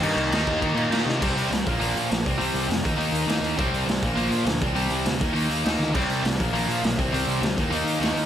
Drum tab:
CC |xxxxxxx-|x-------|--------|--------|
HH |--------|-ooooooo|oooooooo|oooooooo|
SD |--o---oo|--o---o-|--o---o-|--o---o-|
BD |---oo---|o--o---o|---o----|o--o---o|

CC |--------|x-------|--------|
HH |ooooooo-|-ooooooo|oooooooo|
SD |--o---oo|--o---o-|--o---o-|
BD |---o----|o--o---o|---o----|